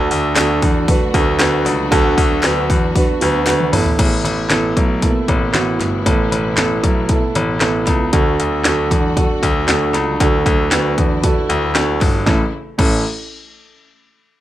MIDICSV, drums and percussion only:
0, 0, Header, 1, 2, 480
1, 0, Start_track
1, 0, Tempo, 517241
1, 1783, Time_signature, 4, 2, 24, 8
1, 13368, End_track
2, 0, Start_track
2, 0, Title_t, "Drums"
2, 102, Note_on_c, 9, 46, 79
2, 195, Note_off_c, 9, 46, 0
2, 335, Note_on_c, 9, 39, 95
2, 337, Note_on_c, 9, 46, 101
2, 338, Note_on_c, 9, 38, 105
2, 343, Note_off_c, 9, 39, 0
2, 343, Note_on_c, 9, 39, 83
2, 430, Note_off_c, 9, 46, 0
2, 431, Note_off_c, 9, 38, 0
2, 436, Note_off_c, 9, 39, 0
2, 579, Note_on_c, 9, 36, 97
2, 579, Note_on_c, 9, 46, 73
2, 672, Note_off_c, 9, 36, 0
2, 672, Note_off_c, 9, 46, 0
2, 819, Note_on_c, 9, 36, 96
2, 819, Note_on_c, 9, 46, 83
2, 912, Note_off_c, 9, 36, 0
2, 912, Note_off_c, 9, 46, 0
2, 1058, Note_on_c, 9, 36, 82
2, 1060, Note_on_c, 9, 46, 71
2, 1151, Note_off_c, 9, 36, 0
2, 1153, Note_off_c, 9, 46, 0
2, 1297, Note_on_c, 9, 39, 74
2, 1298, Note_off_c, 9, 39, 0
2, 1298, Note_on_c, 9, 39, 87
2, 1299, Note_on_c, 9, 46, 79
2, 1302, Note_on_c, 9, 38, 113
2, 1391, Note_off_c, 9, 39, 0
2, 1392, Note_off_c, 9, 46, 0
2, 1394, Note_off_c, 9, 38, 0
2, 1539, Note_on_c, 9, 38, 31
2, 1541, Note_on_c, 9, 46, 69
2, 1632, Note_off_c, 9, 38, 0
2, 1634, Note_off_c, 9, 46, 0
2, 1780, Note_on_c, 9, 36, 122
2, 1783, Note_on_c, 9, 46, 105
2, 1873, Note_off_c, 9, 36, 0
2, 1876, Note_off_c, 9, 46, 0
2, 2020, Note_on_c, 9, 36, 85
2, 2023, Note_on_c, 9, 46, 83
2, 2113, Note_off_c, 9, 36, 0
2, 2115, Note_off_c, 9, 46, 0
2, 2253, Note_on_c, 9, 39, 73
2, 2260, Note_off_c, 9, 39, 0
2, 2260, Note_on_c, 9, 39, 86
2, 2263, Note_on_c, 9, 46, 100
2, 2264, Note_on_c, 9, 38, 116
2, 2353, Note_off_c, 9, 39, 0
2, 2356, Note_off_c, 9, 46, 0
2, 2357, Note_off_c, 9, 38, 0
2, 2504, Note_on_c, 9, 36, 92
2, 2509, Note_on_c, 9, 46, 74
2, 2597, Note_off_c, 9, 36, 0
2, 2602, Note_off_c, 9, 46, 0
2, 2743, Note_on_c, 9, 36, 93
2, 2745, Note_on_c, 9, 46, 72
2, 2835, Note_off_c, 9, 36, 0
2, 2838, Note_off_c, 9, 46, 0
2, 2982, Note_on_c, 9, 46, 78
2, 3075, Note_off_c, 9, 46, 0
2, 3218, Note_on_c, 9, 39, 82
2, 3218, Note_on_c, 9, 46, 83
2, 3220, Note_on_c, 9, 38, 63
2, 3310, Note_off_c, 9, 39, 0
2, 3311, Note_off_c, 9, 46, 0
2, 3312, Note_off_c, 9, 38, 0
2, 3344, Note_on_c, 9, 48, 66
2, 3437, Note_off_c, 9, 48, 0
2, 3462, Note_on_c, 9, 46, 76
2, 3463, Note_on_c, 9, 45, 83
2, 3555, Note_off_c, 9, 46, 0
2, 3556, Note_off_c, 9, 45, 0
2, 3581, Note_on_c, 9, 43, 91
2, 3674, Note_off_c, 9, 43, 0
2, 3702, Note_on_c, 9, 36, 108
2, 3703, Note_on_c, 9, 42, 93
2, 3704, Note_on_c, 9, 49, 86
2, 3795, Note_off_c, 9, 36, 0
2, 3796, Note_off_c, 9, 42, 0
2, 3796, Note_off_c, 9, 49, 0
2, 3947, Note_on_c, 9, 42, 67
2, 4040, Note_off_c, 9, 42, 0
2, 4177, Note_on_c, 9, 39, 79
2, 4180, Note_on_c, 9, 38, 116
2, 4180, Note_on_c, 9, 42, 90
2, 4270, Note_off_c, 9, 39, 0
2, 4272, Note_off_c, 9, 42, 0
2, 4273, Note_off_c, 9, 38, 0
2, 4424, Note_on_c, 9, 36, 87
2, 4426, Note_on_c, 9, 42, 73
2, 4517, Note_off_c, 9, 36, 0
2, 4519, Note_off_c, 9, 42, 0
2, 4662, Note_on_c, 9, 42, 79
2, 4663, Note_on_c, 9, 36, 82
2, 4755, Note_off_c, 9, 42, 0
2, 4756, Note_off_c, 9, 36, 0
2, 4903, Note_on_c, 9, 36, 70
2, 4904, Note_on_c, 9, 42, 65
2, 4995, Note_off_c, 9, 36, 0
2, 4997, Note_off_c, 9, 42, 0
2, 5142, Note_on_c, 9, 39, 75
2, 5143, Note_on_c, 9, 42, 68
2, 5145, Note_on_c, 9, 38, 98
2, 5235, Note_off_c, 9, 39, 0
2, 5236, Note_off_c, 9, 42, 0
2, 5238, Note_off_c, 9, 38, 0
2, 5386, Note_on_c, 9, 38, 30
2, 5388, Note_on_c, 9, 42, 66
2, 5479, Note_off_c, 9, 38, 0
2, 5480, Note_off_c, 9, 42, 0
2, 5625, Note_on_c, 9, 36, 100
2, 5627, Note_on_c, 9, 42, 98
2, 5718, Note_off_c, 9, 36, 0
2, 5720, Note_off_c, 9, 42, 0
2, 5868, Note_on_c, 9, 42, 78
2, 5961, Note_off_c, 9, 42, 0
2, 6099, Note_on_c, 9, 39, 79
2, 6102, Note_on_c, 9, 38, 116
2, 6102, Note_on_c, 9, 42, 100
2, 6192, Note_off_c, 9, 39, 0
2, 6194, Note_off_c, 9, 42, 0
2, 6195, Note_off_c, 9, 38, 0
2, 6343, Note_on_c, 9, 36, 89
2, 6345, Note_on_c, 9, 42, 73
2, 6436, Note_off_c, 9, 36, 0
2, 6438, Note_off_c, 9, 42, 0
2, 6578, Note_on_c, 9, 42, 77
2, 6582, Note_on_c, 9, 36, 90
2, 6671, Note_off_c, 9, 42, 0
2, 6674, Note_off_c, 9, 36, 0
2, 6824, Note_on_c, 9, 42, 74
2, 6917, Note_off_c, 9, 42, 0
2, 7060, Note_on_c, 9, 39, 84
2, 7061, Note_on_c, 9, 42, 75
2, 7064, Note_on_c, 9, 38, 92
2, 7153, Note_off_c, 9, 39, 0
2, 7154, Note_off_c, 9, 42, 0
2, 7156, Note_off_c, 9, 38, 0
2, 7300, Note_on_c, 9, 38, 32
2, 7301, Note_on_c, 9, 42, 68
2, 7305, Note_on_c, 9, 36, 76
2, 7392, Note_off_c, 9, 38, 0
2, 7394, Note_off_c, 9, 42, 0
2, 7398, Note_off_c, 9, 36, 0
2, 7543, Note_on_c, 9, 42, 91
2, 7545, Note_on_c, 9, 36, 108
2, 7636, Note_off_c, 9, 42, 0
2, 7638, Note_off_c, 9, 36, 0
2, 7792, Note_on_c, 9, 42, 76
2, 7885, Note_off_c, 9, 42, 0
2, 8026, Note_on_c, 9, 39, 84
2, 8029, Note_on_c, 9, 42, 102
2, 8030, Note_on_c, 9, 38, 112
2, 8119, Note_off_c, 9, 39, 0
2, 8122, Note_off_c, 9, 38, 0
2, 8122, Note_off_c, 9, 42, 0
2, 8270, Note_on_c, 9, 36, 80
2, 8274, Note_on_c, 9, 42, 75
2, 8362, Note_off_c, 9, 36, 0
2, 8367, Note_off_c, 9, 42, 0
2, 8508, Note_on_c, 9, 36, 84
2, 8511, Note_on_c, 9, 42, 74
2, 8601, Note_off_c, 9, 36, 0
2, 8604, Note_off_c, 9, 42, 0
2, 8748, Note_on_c, 9, 36, 69
2, 8752, Note_on_c, 9, 42, 70
2, 8841, Note_off_c, 9, 36, 0
2, 8845, Note_off_c, 9, 42, 0
2, 8986, Note_on_c, 9, 39, 77
2, 8987, Note_on_c, 9, 42, 75
2, 8990, Note_on_c, 9, 38, 101
2, 9079, Note_off_c, 9, 39, 0
2, 9080, Note_off_c, 9, 42, 0
2, 9082, Note_off_c, 9, 38, 0
2, 9226, Note_on_c, 9, 38, 33
2, 9228, Note_on_c, 9, 42, 72
2, 9319, Note_off_c, 9, 38, 0
2, 9321, Note_off_c, 9, 42, 0
2, 9469, Note_on_c, 9, 36, 116
2, 9471, Note_on_c, 9, 42, 95
2, 9562, Note_off_c, 9, 36, 0
2, 9563, Note_off_c, 9, 42, 0
2, 9706, Note_on_c, 9, 36, 90
2, 9711, Note_on_c, 9, 42, 74
2, 9799, Note_off_c, 9, 36, 0
2, 9804, Note_off_c, 9, 42, 0
2, 9945, Note_on_c, 9, 39, 93
2, 9947, Note_on_c, 9, 42, 112
2, 9948, Note_on_c, 9, 38, 119
2, 10038, Note_off_c, 9, 39, 0
2, 10040, Note_off_c, 9, 42, 0
2, 10041, Note_off_c, 9, 38, 0
2, 10189, Note_on_c, 9, 36, 87
2, 10190, Note_on_c, 9, 42, 68
2, 10281, Note_off_c, 9, 36, 0
2, 10283, Note_off_c, 9, 42, 0
2, 10426, Note_on_c, 9, 42, 74
2, 10427, Note_on_c, 9, 36, 90
2, 10519, Note_off_c, 9, 42, 0
2, 10520, Note_off_c, 9, 36, 0
2, 10670, Note_on_c, 9, 42, 67
2, 10762, Note_off_c, 9, 42, 0
2, 10907, Note_on_c, 9, 39, 79
2, 10908, Note_on_c, 9, 42, 76
2, 10910, Note_on_c, 9, 38, 102
2, 11000, Note_off_c, 9, 39, 0
2, 11001, Note_off_c, 9, 42, 0
2, 11003, Note_off_c, 9, 38, 0
2, 11146, Note_on_c, 9, 38, 34
2, 11148, Note_on_c, 9, 46, 66
2, 11149, Note_on_c, 9, 36, 90
2, 11239, Note_off_c, 9, 38, 0
2, 11240, Note_off_c, 9, 46, 0
2, 11242, Note_off_c, 9, 36, 0
2, 11388, Note_on_c, 9, 36, 97
2, 11390, Note_on_c, 9, 38, 91
2, 11481, Note_off_c, 9, 36, 0
2, 11483, Note_off_c, 9, 38, 0
2, 11867, Note_on_c, 9, 36, 110
2, 11867, Note_on_c, 9, 49, 85
2, 11960, Note_off_c, 9, 36, 0
2, 11960, Note_off_c, 9, 49, 0
2, 13368, End_track
0, 0, End_of_file